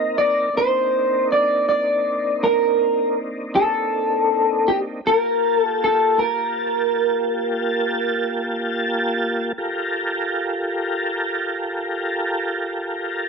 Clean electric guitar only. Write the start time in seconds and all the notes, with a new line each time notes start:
Already playing: D#5
0.18 D5
0.57 C5
1.32 D5
1.69 D5
2.44 A#4
3.55 A4
4.68 G4
5.07 A#4
5.60 A4
5.84 A4
6.19 A#4